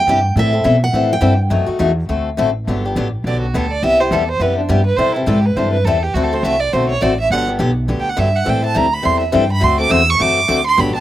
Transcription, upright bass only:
0, 0, Header, 1, 3, 480
1, 0, Start_track
1, 0, Key_signature, 1, "major"
1, 0, Tempo, 289296
1, 601, Time_signature, 4, 2, 24, 8
1, 18253, End_track
2, 0, Start_track
2, 0, Title_t, "Upright bass"
2, 0, Program_c, 0, 32
2, 117, Note_on_c, 0, 43, 94
2, 580, Note_off_c, 0, 43, 0
2, 590, Note_on_c, 0, 45, 92
2, 1061, Note_off_c, 0, 45, 0
2, 1079, Note_on_c, 0, 47, 104
2, 1536, Note_off_c, 0, 47, 0
2, 1546, Note_on_c, 0, 45, 82
2, 2005, Note_off_c, 0, 45, 0
2, 2015, Note_on_c, 0, 43, 85
2, 2483, Note_off_c, 0, 43, 0
2, 2493, Note_on_c, 0, 42, 96
2, 2767, Note_off_c, 0, 42, 0
2, 2979, Note_on_c, 0, 40, 101
2, 3454, Note_off_c, 0, 40, 0
2, 3468, Note_on_c, 0, 38, 79
2, 3939, Note_off_c, 0, 38, 0
2, 3958, Note_on_c, 0, 33, 86
2, 4424, Note_off_c, 0, 33, 0
2, 4437, Note_on_c, 0, 31, 88
2, 4894, Note_off_c, 0, 31, 0
2, 4904, Note_on_c, 0, 33, 87
2, 5366, Note_off_c, 0, 33, 0
2, 5376, Note_on_c, 0, 35, 85
2, 5852, Note_off_c, 0, 35, 0
2, 5871, Note_on_c, 0, 38, 86
2, 6336, Note_off_c, 0, 38, 0
2, 6346, Note_on_c, 0, 36, 79
2, 6806, Note_off_c, 0, 36, 0
2, 6816, Note_on_c, 0, 40, 93
2, 7282, Note_off_c, 0, 40, 0
2, 7292, Note_on_c, 0, 42, 78
2, 7771, Note_off_c, 0, 42, 0
2, 7785, Note_on_c, 0, 43, 94
2, 8247, Note_off_c, 0, 43, 0
2, 8257, Note_on_c, 0, 48, 80
2, 8734, Note_off_c, 0, 48, 0
2, 8746, Note_on_c, 0, 44, 100
2, 9218, Note_off_c, 0, 44, 0
2, 9227, Note_on_c, 0, 43, 86
2, 9688, Note_off_c, 0, 43, 0
2, 9698, Note_on_c, 0, 40, 89
2, 10174, Note_off_c, 0, 40, 0
2, 10190, Note_on_c, 0, 38, 90
2, 10655, Note_off_c, 0, 38, 0
2, 10665, Note_on_c, 0, 36, 90
2, 11138, Note_off_c, 0, 36, 0
2, 11170, Note_on_c, 0, 35, 84
2, 11631, Note_off_c, 0, 35, 0
2, 11648, Note_on_c, 0, 33, 82
2, 12110, Note_off_c, 0, 33, 0
2, 12118, Note_on_c, 0, 31, 89
2, 12585, Note_off_c, 0, 31, 0
2, 12599, Note_on_c, 0, 35, 94
2, 13066, Note_off_c, 0, 35, 0
2, 13084, Note_on_c, 0, 38, 86
2, 13549, Note_off_c, 0, 38, 0
2, 13569, Note_on_c, 0, 43, 82
2, 14032, Note_off_c, 0, 43, 0
2, 14058, Note_on_c, 0, 45, 82
2, 14516, Note_off_c, 0, 45, 0
2, 14532, Note_on_c, 0, 38, 95
2, 14993, Note_off_c, 0, 38, 0
2, 15022, Note_on_c, 0, 40, 84
2, 15479, Note_off_c, 0, 40, 0
2, 15505, Note_on_c, 0, 43, 98
2, 15955, Note_off_c, 0, 43, 0
2, 15965, Note_on_c, 0, 38, 95
2, 16430, Note_off_c, 0, 38, 0
2, 16447, Note_on_c, 0, 40, 107
2, 16912, Note_off_c, 0, 40, 0
2, 16928, Note_on_c, 0, 42, 80
2, 17387, Note_off_c, 0, 42, 0
2, 17397, Note_on_c, 0, 38, 87
2, 17867, Note_off_c, 0, 38, 0
2, 17886, Note_on_c, 0, 31, 89
2, 18147, Note_off_c, 0, 31, 0
2, 18253, End_track
3, 0, Start_track
3, 0, Title_t, "Muted upright bass strokes"
3, 2784, Note_on_c, 9, 29, 40
3, 2950, Note_off_c, 9, 29, 0
3, 18167, Note_on_c, 9, 29, 44
3, 18253, Note_off_c, 9, 29, 0
3, 18253, End_track
0, 0, End_of_file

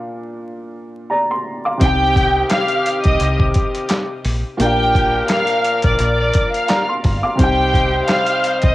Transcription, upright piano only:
0, 0, Header, 1, 2, 480
1, 0, Start_track
1, 0, Key_signature, -3, "minor"
1, 0, Tempo, 697674
1, 1245, Time_signature, 4, 2, 24, 8
1, 6019, End_track
2, 0, Start_track
2, 0, Title_t, "Upright piano"
2, 0, Program_c, 0, 0
2, 0, Control_c, 0, 64, 127
2, 0, Note_on_c, 0, 46, 78
2, 0, Note_on_c, 0, 58, 68
2, 0, Note_on_c, 0, 62, 73
2, 0, Note_on_c, 0, 65, 68
2, 0, Note_on_c, 0, 77, 80
2, 520, Note_off_c, 0, 77, 0
2, 755, Note_on_c, 0, 82, 69
2, 760, Note_on_c, 0, 74, 63
2, 885, Note_off_c, 0, 82, 0
2, 888, Note_off_c, 0, 74, 0
2, 900, Note_on_c, 0, 84, 76
2, 968, Note_off_c, 0, 46, 0
2, 975, Note_off_c, 0, 58, 0
2, 982, Note_off_c, 0, 62, 0
2, 989, Note_off_c, 0, 65, 0
2, 1127, Note_off_c, 0, 84, 0
2, 1136, Note_on_c, 0, 86, 65
2, 1140, Note_on_c, 0, 77, 59
2, 1221, Note_on_c, 0, 48, 73
2, 1234, Note_on_c, 0, 60, 72
2, 1249, Note_on_c, 0, 63, 72
2, 1253, Control_c, 0, 64, 0
2, 1263, Note_on_c, 0, 67, 69
2, 1276, Note_on_c, 0, 79, 84
2, 1364, Control_c, 0, 64, 127
2, 1365, Note_off_c, 0, 86, 0
2, 1367, Note_off_c, 0, 77, 0
2, 3126, Note_off_c, 0, 48, 0
2, 3132, Note_off_c, 0, 60, 0
2, 3139, Note_off_c, 0, 63, 0
2, 3147, Note_off_c, 0, 67, 0
2, 3147, Note_on_c, 0, 46, 78
2, 3153, Note_off_c, 0, 79, 0
2, 3161, Note_on_c, 0, 58, 73
2, 3173, Control_c, 0, 64, 0
2, 3175, Note_on_c, 0, 62, 73
2, 3189, Note_on_c, 0, 65, 70
2, 3202, Note_on_c, 0, 77, 83
2, 3274, Control_c, 0, 64, 127
2, 4360, Note_off_c, 0, 77, 0
2, 4595, Note_on_c, 0, 82, 70
2, 4600, Note_on_c, 0, 74, 64
2, 4726, Note_off_c, 0, 82, 0
2, 4728, Note_off_c, 0, 74, 0
2, 4739, Note_on_c, 0, 84, 79
2, 4809, Note_off_c, 0, 46, 0
2, 4816, Note_off_c, 0, 58, 0
2, 4822, Note_off_c, 0, 62, 0
2, 4830, Note_off_c, 0, 65, 0
2, 4966, Note_off_c, 0, 84, 0
2, 4974, Note_on_c, 0, 86, 69
2, 4978, Note_on_c, 0, 77, 59
2, 5058, Note_on_c, 0, 48, 76
2, 5072, Note_on_c, 0, 60, 72
2, 5086, Note_on_c, 0, 63, 70
2, 5095, Control_c, 0, 64, 0
2, 5100, Note_on_c, 0, 67, 72
2, 5113, Note_on_c, 0, 79, 89
2, 5204, Note_off_c, 0, 86, 0
2, 5206, Note_off_c, 0, 77, 0
2, 5207, Control_c, 0, 64, 127
2, 6019, Note_off_c, 0, 48, 0
2, 6019, Note_off_c, 0, 60, 0
2, 6019, Note_off_c, 0, 63, 0
2, 6019, Note_off_c, 0, 67, 0
2, 6019, Note_off_c, 0, 79, 0
2, 6019, End_track
0, 0, End_of_file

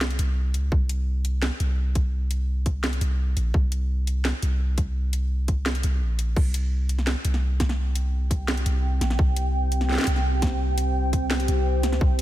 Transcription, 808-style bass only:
0, 0, Header, 1, 2, 480
1, 0, Start_track
1, 0, Tempo, 352941
1, 976, Time_signature, 4, 2, 24, 8
1, 16615, End_track
2, 0, Start_track
2, 0, Title_t, "808-style bass"
2, 0, Program_c, 0, 38
2, 0, Note_on_c, 0, 36, 94
2, 242, Note_off_c, 0, 36, 0
2, 257, Note_on_c, 0, 36, 93
2, 736, Note_on_c, 0, 37, 85
2, 757, Note_off_c, 0, 36, 0
2, 958, Note_off_c, 0, 37, 0
2, 977, Note_on_c, 0, 36, 89
2, 2046, Note_off_c, 0, 36, 0
2, 2177, Note_on_c, 0, 36, 93
2, 4082, Note_off_c, 0, 36, 0
2, 4095, Note_on_c, 0, 36, 96
2, 4561, Note_off_c, 0, 36, 0
2, 4578, Note_on_c, 0, 34, 81
2, 4799, Note_off_c, 0, 34, 0
2, 4817, Note_on_c, 0, 36, 90
2, 5886, Note_off_c, 0, 36, 0
2, 6020, Note_on_c, 0, 36, 95
2, 7924, Note_off_c, 0, 36, 0
2, 7940, Note_on_c, 0, 36, 95
2, 8180, Note_on_c, 0, 34, 80
2, 8200, Note_off_c, 0, 36, 0
2, 8644, Note_off_c, 0, 34, 0
2, 8658, Note_on_c, 0, 36, 93
2, 9726, Note_off_c, 0, 36, 0
2, 9856, Note_on_c, 0, 36, 95
2, 11762, Note_off_c, 0, 36, 0
2, 11777, Note_on_c, 0, 36, 96
2, 12242, Note_off_c, 0, 36, 0
2, 12253, Note_on_c, 0, 34, 83
2, 12477, Note_off_c, 0, 34, 0
2, 12497, Note_on_c, 0, 36, 93
2, 13566, Note_off_c, 0, 36, 0
2, 13698, Note_on_c, 0, 36, 97
2, 15603, Note_off_c, 0, 36, 0
2, 15616, Note_on_c, 0, 36, 100
2, 16097, Note_on_c, 0, 37, 83
2, 16117, Note_off_c, 0, 36, 0
2, 16319, Note_off_c, 0, 37, 0
2, 16335, Note_on_c, 0, 36, 94
2, 16615, Note_off_c, 0, 36, 0
2, 16615, End_track
0, 0, End_of_file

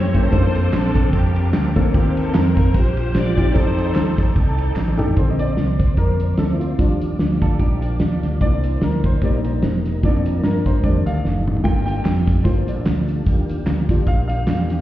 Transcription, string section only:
0, 0, Header, 1, 2, 480
1, 0, Start_track
1, 0, Key_signature, -2, "major"
1, 0, Tempo, 404313
1, 391, Time_signature, 4, 2, 24, 8
1, 17584, End_track
2, 0, Start_track
2, 0, Title_t, "String section"
2, 0, Program_c, 0, 48
2, 0, Note_on_c, 0, 67, 74
2, 0, Note_on_c, 0, 73, 103
2, 166, Note_on_c, 0, 72, 110
2, 177, Note_off_c, 0, 73, 0
2, 185, Note_on_c, 0, 69, 79
2, 350, Note_off_c, 0, 67, 0
2, 857, Note_off_c, 0, 69, 0
2, 865, Note_off_c, 0, 72, 0
2, 871, Note_on_c, 0, 69, 109
2, 887, Note_on_c, 0, 62, 80
2, 891, Note_on_c, 0, 60, 80
2, 1350, Note_off_c, 0, 69, 0
2, 1359, Note_on_c, 0, 67, 80
2, 1361, Note_off_c, 0, 62, 0
2, 1373, Note_on_c, 0, 58, 61
2, 1375, Note_on_c, 0, 62, 64
2, 1793, Note_off_c, 0, 60, 0
2, 2052, Note_off_c, 0, 67, 0
2, 2274, Note_off_c, 0, 58, 0
2, 2275, Note_off_c, 0, 62, 0
2, 2314, Note_on_c, 0, 67, 92
2, 2328, Note_on_c, 0, 58, 68
2, 2332, Note_on_c, 0, 60, 68
2, 2559, Note_off_c, 0, 67, 0
2, 2581, Note_on_c, 0, 69, 94
2, 2777, Note_off_c, 0, 69, 0
2, 2779, Note_on_c, 0, 70, 98
2, 3029, Note_off_c, 0, 70, 0
2, 3044, Note_on_c, 0, 70, 86
2, 3230, Note_off_c, 0, 58, 0
2, 3233, Note_off_c, 0, 60, 0
2, 3248, Note_off_c, 0, 70, 0
2, 3271, Note_on_c, 0, 72, 100
2, 3281, Note_on_c, 0, 67, 71
2, 3287, Note_on_c, 0, 65, 60
2, 3511, Note_off_c, 0, 72, 0
2, 3525, Note_on_c, 0, 72, 100
2, 3728, Note_off_c, 0, 72, 0
2, 3740, Note_on_c, 0, 74, 104
2, 3741, Note_off_c, 0, 67, 0
2, 3742, Note_off_c, 0, 65, 0
2, 3756, Note_on_c, 0, 65, 78
2, 3756, Note_on_c, 0, 67, 69
2, 4198, Note_off_c, 0, 67, 0
2, 4199, Note_off_c, 0, 65, 0
2, 4210, Note_on_c, 0, 72, 102
2, 4222, Note_on_c, 0, 69, 82
2, 4224, Note_off_c, 0, 74, 0
2, 4224, Note_on_c, 0, 63, 65
2, 4965, Note_off_c, 0, 72, 0
2, 5137, Note_off_c, 0, 69, 0
2, 5138, Note_off_c, 0, 63, 0
2, 5187, Note_on_c, 0, 69, 77
2, 5193, Note_on_c, 0, 60, 51
2, 5193, Note_on_c, 0, 63, 54
2, 5886, Note_off_c, 0, 69, 0
2, 6103, Note_off_c, 0, 60, 0
2, 6103, Note_off_c, 0, 63, 0
2, 17584, End_track
0, 0, End_of_file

